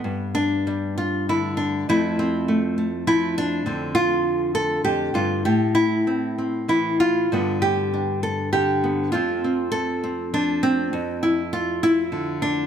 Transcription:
nylon-string guitar
Already playing: B3
0.04 G2
0.35 D4
0.67 G3
0.98 F4
1.29 D3 E4
1.57 D4
1.89 F2 F3 A3 C4 E4
2.19 C4
2.48 A3
2.78 A3
3.07 F3 E4
3.38 D4
3.66 F2 D3 C4
3.95 F4
4.55 A4
4.85 F2 G4
5.14 G2 F4
5.45 A2 G4
5.75 E4
6.07 C4
6.38 C4
6.68 E3 E4
7.00 F4
7.32 G2 D3 B3 D4
7.62 G4
7.94 D4
8.23 A4
8.53 D3 G4
8.84 B3
9.12 F2 F3 C4 F4
9.44 C4
9.72 A4
10.04 C4
10.34 F3 D4
10.63 C4
10.93 F2
11.23 E4
11.53 F4
11.83 E4
12.12 D3
12.42 D4

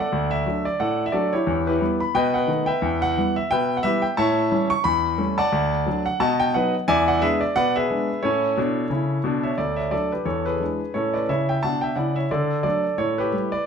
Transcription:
grand piano
0.00 A4 D5 F#5
0.12 D2
0.31 E5
0.46 F#3 A3 D4
0.65 D5
0.80 A2 A4 D5 F#5
1.06 E5
1.12 F#3 A3 D4 F#4 A4 D5
1.33 E4 G4 C#5
1.47 E2
1.67 E4 G4 B4
1.80 E3 G3 B3
2.00 B5
2.15 B2 B4 D#5 G5
2.34 B4 D#5 F#5
2.47 D#3 A3 B3
2.66 B4 E5 G5
2.82 E2
3.02 F#5
3.17 E3 G3 B3
3.36 E5
3.51 B2 B4 E5 G5
3.77 F#5
3.83 E3 G3 B3 G4 B4 E5
4.02 G5
4.17 A2 C#5 E5 A5
4.51 E3 G3 C#4
4.70 C#6
4.84 E2 B5
5.18 G3 A3 C#4
5.38 D5 F#5 A5
5.52 D2
5.86 F#3 A3 D4
6.06 F#5
6.20 B2 D#5 F#5 A5
6.40 G5
6.54 F#3 B3 D#4 B4 D#5 F#5
6.88 E2 D5 E5 G#5
7.08 F#5
7.21 G#3 B3 D4 G#4 B4 E5
7.41 D5
7.56 B2 B4 D5 F#5
7.76 G#4 B4 E5
7.90 G#3 B3 D4
8.23 A2 C#4 E4 A4 C#5
8.57 B2 D4
8.90 C#3 E4
9.24 B2 D4
9.43 C#5 E5
9.58 D2 A4 D5
9.76 C#5 E5
9.91 F#3 A3 D4 A4 D5
10.12 G4 B4
10.25 E2 A4 C#5
10.46 G#4 B4
10.60 E3 G#3 D4
10.94 A2 C#4 A4 C#5
11.13 B4 D5
11.29 C#3 E4 C#5 E5
11.49 E5 G5
11.63 B2 D4 F#5 A5
11.81 E5 G5
11.96 C#3 E4 D5 F#5
12.16 C#5 E5
12.31 D3 A4 D5
12.63 F#3 A3 D4 A4 D5
12.98 A2 A4 C#5
13.18 G4 B4
13.32 G3 A3 E4
13.52 B4 D5

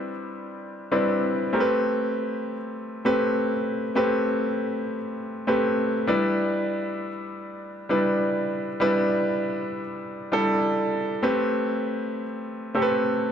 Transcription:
grand piano
Already playing: G3 C4 D4 E4 B4
0.91 G3 C4 D4 E4 B4
1.53 A3 C4 G4 A#4
1.60 B4
3.05 A3 C4 G4 B4
3.95 A3 C4 G4 B4
5.47 A3 C4 G4 B4
6.07 G3 D4 E4 B4
7.89 G3 D4 E4 B4
8.80 G3 D4 E4 B4
10.32 G3 D4 E4 A4
11.23 A3 C4 G4 B4
12.75 A3 C4 G4 A4
12.82 B4

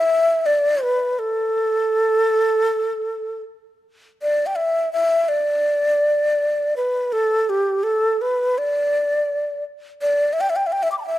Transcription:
xiao
Already playing: E5
0.46 D5
0.83 B4
1.19 A4
4.22 D5
4.46 G5
4.57 E5
4.93 E5
5.29 D5
6.77 B4
7.13 A4
7.50 G4
7.83 A4
8.21 B4
8.58 D5
10.02 D5
10.33 E5
10.41 G5
10.50 E5
10.56 G5
10.67 E5
10.72 G5
10.83 E5
10.92 D6
10.98 A5 B5
11.03 E5 G5

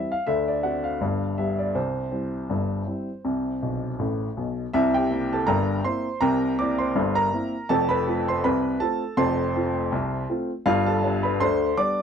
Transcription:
upright piano
Already playing: G3 C4 E4 E5
0.12 F5
0.27 D2 D3 E5
0.48 D5
0.63 A3 C4 F#4 F#5
0.84 F5
1.01 G1 G2
1.38 G3 B3 G4 E5
1.59 D5
1.75 C2 C3 C5
2.12 G3 C4 E4
2.50 G1 G2
2.87 G3 C4 E4
3.25 C2 C3
3.62 B1 B2
3.99 A1 A2
4.37 B1 B2
4.73 C2 C3 E4 E5
4.94 G4 G5
5.11 A#3 C4 E4
5.33 A4 A5
5.47 G1 G2 A#4 G5 A#5
5.85 A#3 C4 E4 C5 C6
6.21 C2 C3 A#4 G5 A#5
6.59 A#3 C4 E4 D5 D6
6.78 C5 C6
6.95 G1 G2
7.15 A#4 A#5
7.33 A#3 C4 E4
7.69 F1 F2 A4 A5
7.89 B4 B5
8.07 A3 C4 F4
8.28 C5 C6
8.44 C2 C3 B4 B5
8.80 A3 C4 F4 A4 A5
9.17 F1 F2 C5 A5 C6
9.56 A3 C4 F4
9.92 C2 C3
10.30 A3 C4 F4
10.66 G1 G2 F4 F5
10.86 A4 A5
11.04 G3 B3 D4
11.23 B4 B5
11.40 D2 D3 C5 C6
11.77 G3 B3 D4 D5 D6

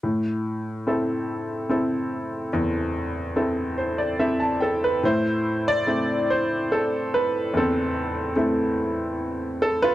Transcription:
upright piano
0.03 A2
0.87 C4 E4 A4
1.69 C4 E4 A4
2.53 E2
3.36 C4 E4 A4
3.78 C5
3.98 D5
4.19 C4 E4 A4 E5
4.40 A5
4.60 A4 G5
4.84 B4
5.03 A2 E4 C5
5.68 D5
5.87 A3 C4 E4
6.30 C5
6.72 A4
7.14 B4
7.54 E2 A4
7.58 C4
8.36 A3 C4 E4
9.62 A4
9.82 F4 B4

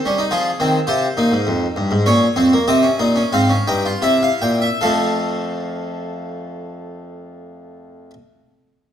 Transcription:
harpsichord
Already playing: C5
0.05 G3 C#4
0.18 D#4
0.31 F3 F4 G#4
0.60 D#3 C4
0.87 C3 F4 C5
1.17 A#2 D#4
1.32 G#2
1.47 F2
1.76 G2
1.91 G#2
2.06 A#2 C#4 C#5
2.36 F2 C4
2.53 A#3
2.68 C3 C4 D#5
2.83 C#4
2.99 A#2 D#4
3.16 C#4
3.33 G#2 C4 F5
3.50 C#4
3.67 G2 D#4 G5
3.85 F4
4.02 C3 E4 E5
4.23 F5
4.42 A#2 G5
4.62 E5
4.81 F2 F3 A3 A4 F5

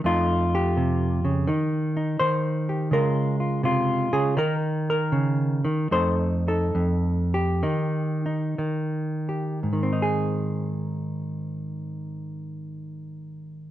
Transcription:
hollow-body jazz guitar
0.04 F2 A3 D#4 F4
0.55 G4
0.77 C3
1.25 C#3
1.47 D#3 D#4
1.97 D#4
2.19 D#3 C5
2.69 G4
2.91 C#3 G#3 F4 A#4
3.40 F4
3.63 C3 F4
4.13 C#3 G#4
4.37 D#3 D#4 A#4
4.90 A#4
5.12 C#3
5.65 D#3
5.91 F2 A3 D#4 A4 C5
6.48 D#4 A4
6.75 F2
7.34 G4
7.63 D#3 D#4
8.26 D#4
8.58 D#3
9.29 G4
9.63 G#2
9.73 D#3
9.83 C4
9.93 D#4
10.02 G#4

